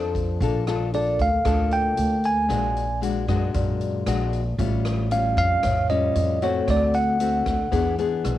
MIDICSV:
0, 0, Header, 1, 6, 480
1, 0, Start_track
1, 0, Tempo, 522466
1, 380, Time_signature, 4, 2, 24, 8
1, 7700, End_track
2, 0, Start_track
2, 0, Title_t, "Tine electric piano"
2, 0, Program_c, 0, 4
2, 871, Note_on_c, 0, 74, 72
2, 1113, Note_off_c, 0, 74, 0
2, 1118, Note_on_c, 0, 77, 89
2, 1588, Note_on_c, 0, 79, 91
2, 1603, Note_off_c, 0, 77, 0
2, 2072, Note_on_c, 0, 80, 88
2, 2078, Note_off_c, 0, 79, 0
2, 2749, Note_off_c, 0, 80, 0
2, 4703, Note_on_c, 0, 77, 76
2, 4931, Note_off_c, 0, 77, 0
2, 4942, Note_on_c, 0, 77, 101
2, 5388, Note_off_c, 0, 77, 0
2, 5418, Note_on_c, 0, 75, 82
2, 5914, Note_off_c, 0, 75, 0
2, 5914, Note_on_c, 0, 73, 75
2, 6154, Note_off_c, 0, 73, 0
2, 6159, Note_on_c, 0, 74, 85
2, 6374, Note_off_c, 0, 74, 0
2, 6382, Note_on_c, 0, 78, 88
2, 7304, Note_off_c, 0, 78, 0
2, 7700, End_track
3, 0, Start_track
3, 0, Title_t, "Vibraphone"
3, 0, Program_c, 1, 11
3, 4411, Control_c, 1, 64, 127
3, 5186, Note_on_c, 1, 73, 58
3, 5766, Note_off_c, 1, 73, 0
3, 6151, Control_c, 1, 64, 0
3, 7700, End_track
4, 0, Start_track
4, 0, Title_t, "Nylon-string guitar"
4, 0, Program_c, 2, 24
4, 0, Note_on_c, 2, 53, 59
4, 0, Note_on_c, 2, 62, 46
4, 0, Note_on_c, 2, 69, 47
4, 0, Note_on_c, 2, 72, 49
4, 355, Note_off_c, 2, 53, 0
4, 362, Note_off_c, 2, 62, 0
4, 365, Note_off_c, 2, 69, 0
4, 367, Note_off_c, 2, 72, 0
4, 383, Note_on_c, 2, 58, 47
4, 389, Note_on_c, 2, 62, 51
4, 389, Note_on_c, 2, 65, 47
4, 395, Note_on_c, 2, 69, 53
4, 585, Note_off_c, 2, 62, 0
4, 586, Note_off_c, 2, 65, 0
4, 589, Note_off_c, 2, 69, 0
4, 623, Note_on_c, 2, 62, 63
4, 625, Note_on_c, 2, 65, 68
4, 629, Note_on_c, 2, 69, 63
4, 824, Note_off_c, 2, 62, 0
4, 824, Note_off_c, 2, 65, 0
4, 825, Note_off_c, 2, 69, 0
4, 861, Note_on_c, 2, 62, 47
4, 867, Note_on_c, 2, 65, 46
4, 871, Note_on_c, 2, 69, 52
4, 1170, Note_off_c, 2, 62, 0
4, 1173, Note_off_c, 2, 65, 0
4, 1175, Note_off_c, 2, 69, 0
4, 1319, Note_off_c, 2, 58, 0
4, 1330, Note_on_c, 2, 58, 52
4, 1332, Note_on_c, 2, 62, 60
4, 1334, Note_on_c, 2, 65, 59
4, 1341, Note_on_c, 2, 69, 63
4, 1981, Note_off_c, 2, 62, 0
4, 1983, Note_off_c, 2, 65, 0
4, 1984, Note_off_c, 2, 69, 0
4, 2271, Note_off_c, 2, 58, 0
4, 2283, Note_on_c, 2, 46, 54
4, 2288, Note_on_c, 2, 56, 47
4, 2292, Note_on_c, 2, 62, 50
4, 2296, Note_on_c, 2, 66, 60
4, 2603, Note_off_c, 2, 56, 0
4, 2606, Note_off_c, 2, 62, 0
4, 2607, Note_off_c, 2, 66, 0
4, 2770, Note_on_c, 2, 56, 46
4, 2775, Note_on_c, 2, 62, 43
4, 2783, Note_on_c, 2, 66, 51
4, 2977, Note_off_c, 2, 56, 0
4, 2979, Note_off_c, 2, 62, 0
4, 2983, Note_off_c, 2, 66, 0
4, 3015, Note_on_c, 2, 56, 58
4, 3021, Note_on_c, 2, 62, 57
4, 3025, Note_on_c, 2, 66, 71
4, 3228, Note_off_c, 2, 46, 0
4, 3255, Note_on_c, 2, 46, 59
4, 3701, Note_off_c, 2, 56, 0
4, 3702, Note_off_c, 2, 62, 0
4, 3702, Note_off_c, 2, 66, 0
4, 3734, Note_on_c, 2, 56, 50
4, 3741, Note_on_c, 2, 62, 45
4, 3746, Note_on_c, 2, 66, 56
4, 4060, Note_off_c, 2, 56, 0
4, 4063, Note_off_c, 2, 62, 0
4, 4065, Note_off_c, 2, 66, 0
4, 4194, Note_off_c, 2, 46, 0
4, 4218, Note_on_c, 2, 45, 57
4, 4220, Note_on_c, 2, 55, 51
4, 4222, Note_on_c, 2, 61, 53
4, 4227, Note_on_c, 2, 65, 52
4, 4661, Note_off_c, 2, 55, 0
4, 4663, Note_off_c, 2, 61, 0
4, 4665, Note_off_c, 2, 65, 0
4, 4693, Note_on_c, 2, 55, 44
4, 4701, Note_on_c, 2, 61, 50
4, 4705, Note_on_c, 2, 65, 60
4, 5155, Note_off_c, 2, 45, 0
4, 5174, Note_off_c, 2, 55, 0
4, 5178, Note_off_c, 2, 61, 0
4, 5180, Note_off_c, 2, 65, 0
4, 5182, Note_on_c, 2, 45, 57
4, 5417, Note_on_c, 2, 55, 57
4, 5419, Note_on_c, 2, 61, 59
4, 5425, Note_on_c, 2, 65, 55
4, 5861, Note_off_c, 2, 55, 0
4, 5861, Note_off_c, 2, 61, 0
4, 5862, Note_off_c, 2, 65, 0
4, 5897, Note_on_c, 2, 57, 63
4, 5900, Note_on_c, 2, 60, 64
4, 5902, Note_on_c, 2, 66, 69
4, 6117, Note_off_c, 2, 45, 0
4, 6137, Note_on_c, 2, 50, 53
4, 6580, Note_off_c, 2, 57, 0
4, 6581, Note_off_c, 2, 60, 0
4, 6583, Note_off_c, 2, 66, 0
4, 6614, Note_on_c, 2, 57, 42
4, 6618, Note_on_c, 2, 60, 45
4, 6625, Note_on_c, 2, 66, 52
4, 6940, Note_off_c, 2, 57, 0
4, 6942, Note_off_c, 2, 60, 0
4, 6945, Note_off_c, 2, 66, 0
4, 7075, Note_off_c, 2, 50, 0
4, 7088, Note_on_c, 2, 52, 52
4, 7089, Note_on_c, 2, 59, 54
4, 7092, Note_on_c, 2, 62, 60
4, 7097, Note_on_c, 2, 68, 57
4, 7295, Note_off_c, 2, 59, 0
4, 7298, Note_off_c, 2, 62, 0
4, 7300, Note_off_c, 2, 68, 0
4, 7335, Note_on_c, 2, 59, 57
4, 7339, Note_on_c, 2, 62, 57
4, 7347, Note_on_c, 2, 68, 67
4, 7700, Note_off_c, 2, 52, 0
4, 7700, Note_off_c, 2, 59, 0
4, 7700, Note_off_c, 2, 62, 0
4, 7700, Note_off_c, 2, 68, 0
4, 7700, End_track
5, 0, Start_track
5, 0, Title_t, "Upright bass"
5, 0, Program_c, 3, 32
5, 0, Note_on_c, 3, 41, 85
5, 344, Note_off_c, 3, 41, 0
5, 373, Note_on_c, 3, 34, 94
5, 1060, Note_off_c, 3, 34, 0
5, 1095, Note_on_c, 3, 38, 69
5, 1320, Note_off_c, 3, 38, 0
5, 1334, Note_on_c, 3, 38, 78
5, 1784, Note_off_c, 3, 38, 0
5, 1817, Note_on_c, 3, 38, 83
5, 2265, Note_off_c, 3, 38, 0
5, 2293, Note_on_c, 3, 34, 90
5, 2980, Note_off_c, 3, 34, 0
5, 3010, Note_on_c, 3, 42, 79
5, 3238, Note_off_c, 3, 42, 0
5, 3257, Note_on_c, 3, 42, 84
5, 3705, Note_off_c, 3, 42, 0
5, 3732, Note_on_c, 3, 34, 88
5, 4182, Note_off_c, 3, 34, 0
5, 4212, Note_on_c, 3, 33, 92
5, 4899, Note_off_c, 3, 33, 0
5, 4931, Note_on_c, 3, 41, 84
5, 5159, Note_off_c, 3, 41, 0
5, 5174, Note_on_c, 3, 41, 77
5, 5623, Note_off_c, 3, 41, 0
5, 5655, Note_on_c, 3, 41, 90
5, 6104, Note_off_c, 3, 41, 0
5, 6133, Note_on_c, 3, 38, 91
5, 6820, Note_off_c, 3, 38, 0
5, 6851, Note_on_c, 3, 38, 78
5, 7079, Note_off_c, 3, 38, 0
5, 7093, Note_on_c, 3, 40, 77
5, 7543, Note_off_c, 3, 40, 0
5, 7577, Note_on_c, 3, 35, 85
5, 7700, Note_off_c, 3, 35, 0
5, 7700, End_track
6, 0, Start_track
6, 0, Title_t, "Drums"
6, 139, Note_on_c, 9, 36, 49
6, 143, Note_on_c, 9, 42, 26
6, 231, Note_off_c, 9, 36, 0
6, 235, Note_off_c, 9, 42, 0
6, 378, Note_on_c, 9, 36, 50
6, 381, Note_on_c, 9, 42, 38
6, 470, Note_off_c, 9, 36, 0
6, 473, Note_off_c, 9, 42, 0
6, 617, Note_on_c, 9, 37, 61
6, 617, Note_on_c, 9, 42, 24
6, 709, Note_off_c, 9, 37, 0
6, 709, Note_off_c, 9, 42, 0
6, 859, Note_on_c, 9, 42, 45
6, 951, Note_off_c, 9, 42, 0
6, 1096, Note_on_c, 9, 36, 54
6, 1098, Note_on_c, 9, 42, 24
6, 1188, Note_off_c, 9, 36, 0
6, 1190, Note_off_c, 9, 42, 0
6, 1332, Note_on_c, 9, 37, 58
6, 1332, Note_on_c, 9, 42, 36
6, 1334, Note_on_c, 9, 36, 61
6, 1424, Note_off_c, 9, 37, 0
6, 1424, Note_off_c, 9, 42, 0
6, 1426, Note_off_c, 9, 36, 0
6, 1573, Note_on_c, 9, 42, 25
6, 1665, Note_off_c, 9, 42, 0
6, 1811, Note_on_c, 9, 42, 40
6, 1903, Note_off_c, 9, 42, 0
6, 2054, Note_on_c, 9, 42, 26
6, 2146, Note_off_c, 9, 42, 0
6, 2295, Note_on_c, 9, 36, 46
6, 2296, Note_on_c, 9, 37, 46
6, 2296, Note_on_c, 9, 42, 36
6, 2387, Note_off_c, 9, 36, 0
6, 2388, Note_off_c, 9, 37, 0
6, 2388, Note_off_c, 9, 42, 0
6, 2540, Note_on_c, 9, 42, 26
6, 2631, Note_off_c, 9, 42, 0
6, 2779, Note_on_c, 9, 42, 43
6, 2871, Note_off_c, 9, 42, 0
6, 3016, Note_on_c, 9, 36, 49
6, 3018, Note_on_c, 9, 37, 58
6, 3018, Note_on_c, 9, 42, 25
6, 3108, Note_off_c, 9, 36, 0
6, 3109, Note_off_c, 9, 37, 0
6, 3109, Note_off_c, 9, 42, 0
6, 3253, Note_on_c, 9, 42, 42
6, 3256, Note_on_c, 9, 36, 58
6, 3345, Note_off_c, 9, 42, 0
6, 3348, Note_off_c, 9, 36, 0
6, 3496, Note_on_c, 9, 42, 27
6, 3588, Note_off_c, 9, 42, 0
6, 3734, Note_on_c, 9, 37, 64
6, 3734, Note_on_c, 9, 42, 49
6, 3826, Note_off_c, 9, 37, 0
6, 3826, Note_off_c, 9, 42, 0
6, 3976, Note_on_c, 9, 42, 26
6, 4068, Note_off_c, 9, 42, 0
6, 4217, Note_on_c, 9, 36, 57
6, 4217, Note_on_c, 9, 42, 40
6, 4309, Note_off_c, 9, 36, 0
6, 4309, Note_off_c, 9, 42, 0
6, 4456, Note_on_c, 9, 37, 60
6, 4456, Note_on_c, 9, 42, 27
6, 4548, Note_off_c, 9, 37, 0
6, 4548, Note_off_c, 9, 42, 0
6, 4694, Note_on_c, 9, 42, 47
6, 4786, Note_off_c, 9, 42, 0
6, 4933, Note_on_c, 9, 42, 23
6, 4935, Note_on_c, 9, 36, 45
6, 5025, Note_off_c, 9, 42, 0
6, 5027, Note_off_c, 9, 36, 0
6, 5172, Note_on_c, 9, 37, 55
6, 5172, Note_on_c, 9, 42, 41
6, 5175, Note_on_c, 9, 36, 55
6, 5264, Note_off_c, 9, 37, 0
6, 5264, Note_off_c, 9, 42, 0
6, 5267, Note_off_c, 9, 36, 0
6, 5416, Note_on_c, 9, 42, 23
6, 5508, Note_off_c, 9, 42, 0
6, 5654, Note_on_c, 9, 42, 42
6, 5746, Note_off_c, 9, 42, 0
6, 5897, Note_on_c, 9, 42, 26
6, 5989, Note_off_c, 9, 42, 0
6, 6135, Note_on_c, 9, 36, 50
6, 6135, Note_on_c, 9, 37, 58
6, 6135, Note_on_c, 9, 42, 34
6, 6227, Note_off_c, 9, 36, 0
6, 6227, Note_off_c, 9, 37, 0
6, 6227, Note_off_c, 9, 42, 0
6, 6373, Note_on_c, 9, 42, 28
6, 6464, Note_off_c, 9, 42, 0
6, 6614, Note_on_c, 9, 42, 46
6, 6706, Note_off_c, 9, 42, 0
6, 6853, Note_on_c, 9, 37, 55
6, 6853, Note_on_c, 9, 42, 23
6, 6855, Note_on_c, 9, 36, 51
6, 6945, Note_off_c, 9, 37, 0
6, 6945, Note_off_c, 9, 42, 0
6, 6947, Note_off_c, 9, 36, 0
6, 7096, Note_on_c, 9, 36, 59
6, 7098, Note_on_c, 9, 42, 44
6, 7188, Note_off_c, 9, 36, 0
6, 7190, Note_off_c, 9, 42, 0
6, 7337, Note_on_c, 9, 42, 27
6, 7428, Note_off_c, 9, 42, 0
6, 7576, Note_on_c, 9, 37, 54
6, 7576, Note_on_c, 9, 42, 46
6, 7668, Note_off_c, 9, 37, 0
6, 7668, Note_off_c, 9, 42, 0
6, 7700, End_track
0, 0, End_of_file